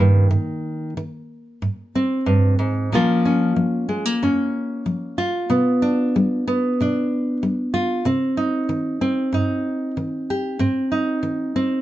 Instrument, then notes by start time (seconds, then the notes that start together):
nylon-string guitar
Already playing: D#3 A#3 C#4 G4
0.00 G2
0.31 G#2
0.97 D#3
1.62 G#2
1.95 C4
2.26 G2
2.59 G#2
2.92 A#2 F3 A#3 C#4 F4
3.25 C#4
3.56 F3
3.89 G#3
4.05 A#3
4.23 F2 C#4
4.86 F3
5.18 F4
5.50 B2 B3
5.82 D4
6.16 G3
6.47 B3
6.80 B2 D4
7.43 G3
7.74 F4
8.05 C3 C4
8.37 D#4
8.69 D#3
9.01 C4
9.33 G2 D#4
9.97 D#3
10.30 G4
10.59 G#2 C4
10.92 D#4
11.23 D#3
11.56 C4